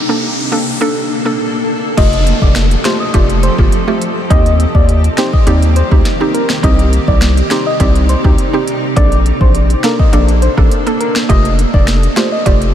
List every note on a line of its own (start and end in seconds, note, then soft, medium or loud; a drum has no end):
0.00 1.95 A#3 medium
0.00 1.95 D4 medium
0.00 1.95 A4 medium
0.00 riser medium
0.09 0.29 A#3 medium
0.09 0.29 D4 medium
0.09 0.29 A4 medium
0.52 0.73 A#3 medium
0.52 0.73 D4 medium
0.52 0.73 A4 medium
0.81 1.02 A#3 medium
0.81 1.02 D4 medium
0.81 1.02 A4 loud
1.25 1.45 A#3 medium
1.25 1.45 D4 medium
1.25 1.45 A4 medium
1.97 2.33 F1 loud
1.97 4.28 F3 medium
1.97 2.51 A3 loud
1.97 8.93 C4 medium
1.97 2.51 F4 medium
1.97 8.93 G4 medium
1.97 2.52 G4 loud
1.97 4.28 A4 medium
1.97 2.21 D#5 medium
1.97 kick loud
1.97 closed hi-hat medium
1.97 crash loud
1.97 downlifter medium
2.13 closed hi-hat medium
2.27 closed hi-hat medium
2.42 2.76 F1 loud
2.42 2.53 D5 medium
2.42 kick loud
2.55 finger snap loud
2.55 snare loud
2.55 closed hi-hat medium
2.71 closed hi-hat medium
2.84 3.06 A3 medium
2.84 3.06 F4 medium
2.84 3.06 G4 medium
2.84 2.97 C5 medium
2.84 finger snap medium
2.84 snare loud
2.84 closed hi-hat medium
3.00 3.11 D#5 medium
3.14 3.49 F1 loud
3.14 3.55 A3 loud
3.14 3.55 F4 medium
3.14 3.55 G4 loud
3.14 3.26 D5 medium
3.14 kick medium
3.14 closed hi-hat medium
3.29 closed hi-hat medium
3.43 3.56 C5 medium
3.43 closed hi-hat medium
3.58 3.69 G1 loud
3.58 3.78 A3 medium
3.58 3.78 F4 medium
3.58 3.78 G4 medium
3.58 kick loud
3.72 closed hi-hat medium
3.88 4.07 A3 medium
3.88 4.07 F4 medium
3.88 4.08 G4 medium
4.02 closed hi-hat medium
4.30 4.66 D#2 loud
4.30 6.61 D#3 medium
4.30 6.61 A#3 medium
4.30 4.84 C4 medium
4.30 4.84 D#4 medium
4.30 4.85 G4 loud
4.30 4.54 D#5 loud
4.30 kick loud
4.30 closed hi-hat medium
4.46 closed hi-hat medium
4.60 closed hi-hat medium
4.75 5.09 D#2 loud
4.75 4.86 D5 medium
4.75 kick loud
4.89 closed hi-hat medium
5.04 closed hi-hat medium
5.17 5.39 C4 medium
5.17 5.39 D#4 medium
5.17 5.39 G4 medium
5.17 5.31 C5 medium
5.17 finger snap medium
5.17 snare loud
5.17 closed hi-hat medium
5.33 5.44 D#5 medium
5.33 kick loud
5.47 5.82 D#2 loud
5.47 5.88 C4 loud
5.47 5.88 D#4 medium
5.47 5.88 G4 loud
5.47 5.59 D5 medium
5.47 closed hi-hat medium
5.62 closed hi-hat medium
5.76 5.89 C5 medium
5.76 closed hi-hat medium
5.91 6.02 D2 loud
5.91 6.11 C4 medium
5.91 6.11 D#4 medium
5.91 6.11 G4 medium
5.91 kick loud
6.05 snare medium
6.05 closed hi-hat medium
6.20 6.40 C4 medium
6.20 6.40 D#4 medium
6.20 6.41 G4 medium
6.34 6.47 A#4 medium
6.34 closed hi-hat medium
6.49 finger snap medium
6.49 snare loud
6.63 6.99 C2 loud
6.63 8.94 C3 medium
6.63 7.17 C4 medium
6.63 7.17 D#4 medium
6.63 8.94 D#4 medium
6.63 7.17 G4 loud
6.63 6.87 D#5 loud
6.63 kick loud
6.63 closed hi-hat medium
6.79 closed hi-hat medium
6.93 closed hi-hat medium
7.08 7.42 C2 loud
7.08 7.19 D5 medium
7.08 kick loud
7.21 finger snap medium
7.21 snare loud
7.21 closed hi-hat medium
7.37 closed hi-hat medium
7.50 7.72 C4 medium
7.50 7.72 D#4 medium
7.50 7.72 G4 medium
7.50 7.63 C5 medium
7.50 finger snap medium
7.50 snare loud
7.50 closed hi-hat medium
7.66 7.78 D#5 medium
7.80 8.15 C2 loud
7.80 8.21 C4 medium
7.80 8.21 D#4 medium
7.80 8.21 G4 loud
7.80 7.93 D5 medium
7.80 kick medium
7.80 closed hi-hat medium
7.96 closed hi-hat medium
8.09 8.22 C5 medium
8.09 closed hi-hat medium
8.24 8.35 D2 medium
8.24 8.44 C4 medium
8.24 8.44 D#4 medium
8.24 8.44 G4 medium
8.24 kick loud
8.38 closed hi-hat medium
8.53 8.73 C4 medium
8.53 8.73 D#4 medium
8.53 8.74 G4 medium
8.68 closed hi-hat medium
8.96 9.32 A#1 loud
8.96 9.50 A#3 medium
8.96 11.27 A#3 medium
8.96 9.50 D4 medium
8.96 11.27 D4 medium
8.96 11.27 A4 medium
8.96 9.51 A4 loud
8.96 9.20 D5 loud
8.96 kick loud
8.96 closed hi-hat medium
9.12 closed hi-hat medium
9.26 closed hi-hat medium
9.41 9.75 A#1 loud
9.41 9.52 C5 medium
9.41 kick loud
9.55 closed hi-hat medium
9.70 closed hi-hat medium
9.83 10.05 A#3 medium
9.83 10.05 D4 medium
9.83 10.05 A4 medium
9.83 9.97 A#4 medium
9.83 finger snap medium
9.83 snare loud
9.83 closed hi-hat medium
9.99 10.11 D#5 medium
9.99 kick loud
10.13 10.48 A#1 loud
10.13 10.54 A#3 loud
10.13 10.54 D4 medium
10.13 10.54 A4 loud
10.13 10.26 D5 medium
10.13 closed hi-hat medium
10.28 closed hi-hat medium
10.42 10.55 C5 medium
10.42 closed hi-hat medium
10.57 10.68 A1 medium
10.57 10.77 A#3 medium
10.57 10.77 D4 medium
10.57 10.78 A4 medium
10.57 kick loud
10.57 cross-stick medium
10.71 closed hi-hat medium
10.86 11.06 A#3 medium
10.86 11.06 D4 medium
10.86 11.07 A4 medium
10.86 closed hi-hat soft
11.00 11.13 A#4 medium
11.00 closed hi-hat medium
11.15 finger snap medium
11.15 snare loud
11.29 11.65 F1 loud
11.29 12.74 F3 medium
11.29 11.83 A3 medium
11.29 12.74 C4 medium
11.29 11.83 F4 medium
11.29 11.83 G4 loud
11.29 12.74 G4 medium
11.29 12.74 A4 medium
11.29 11.53 D#5 loud
11.29 kick loud
11.29 closed hi-hat medium
11.45 closed hi-hat medium
11.59 closed hi-hat medium
11.74 12.08 F1 loud
11.74 11.85 D5 medium
11.74 kick loud
11.87 finger snap loud
11.87 snare loud
11.87 closed hi-hat medium
12.03 closed hi-hat medium
12.16 12.37 A3 medium
12.16 12.38 F4 medium
12.16 12.38 G4 medium
12.16 12.29 C5 medium
12.16 finger snap medium
12.16 snare loud
12.16 closed hi-hat medium
12.32 12.43 D#5 medium
12.46 12.74 F1 loud
12.46 12.74 A3 loud
12.46 12.74 F4 medium
12.46 12.74 G4 loud
12.46 12.59 D5 medium
12.46 kick loud
12.46 closed hi-hat medium
12.62 closed hi-hat medium